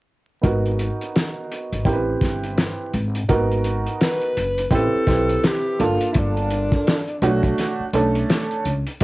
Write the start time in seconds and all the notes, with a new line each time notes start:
0.42 G#1 B3 D#4 F#4 A#4, kick, closed hi-hat
0.66 closed hi-hat
0.79 closed hi-hat
1.01 closed hi-hat
1.16 snare, closed hi-hat
1.51 closed hi-hat
1.72 G#1, closed hi-hat
1.85 A1 C4 E4 G4 A#4, kick, closed hi-hat
1.93 B4
2.21 G1, kick, snare, closed hi-hat
2.43 closed hi-hat
2.57 snare, closed hi-hat
2.93 G#1, closed hi-hat
3.15 closed hi-hat
3.28 G#1 A#3 D#4 F#4 A#4, kick, closed hi-hat
3.35 B3
3.51 closed hi-hat
3.64 closed hi-hat
3.86 closed hi-hat
4.01 B4, snare, closed hi-hat
4.21 closed hi-hat
4.37 F#1, closed hi-hat
4.58 closed hi-hat
4.71 A1 C4 E4 G4 B4, kick, closed hi-hat
4.75 A4
4.95 muted upright bass stroke
5.07 B1 C4 E4 G4 B4, kick, snare, closed hi-hat
5.29 closed hi-hat
5.44 G4, snare, closed hi-hat
5.79 G1 A#3 D4 F4 A4, closed hi-hat
5.83 F4
6.01 closed hi-hat
6.13 G1 E4, kick, closed hi-hat
6.19 D4
6.37 closed hi-hat
6.50 closed hi-hat
6.72 kick, closed hi-hat
6.87 snare, closed hi-hat
7.08 closed hi-hat
7.22 B1 A3 D4 F#4 C#5, closed hi-hat
7.43 kick, closed hi-hat
7.58 snare, closed hi-hat
7.79 muted upright bass stroke
7.93 B1 A3 C#4 D4 A4, closed hi-hat
8.15 closed hi-hat
8.30 snare, closed hi-hat
8.51 closed hi-hat
8.65 C#2, closed hi-hat
8.87 closed hi-hat
9.00 A#3, closed hi-hat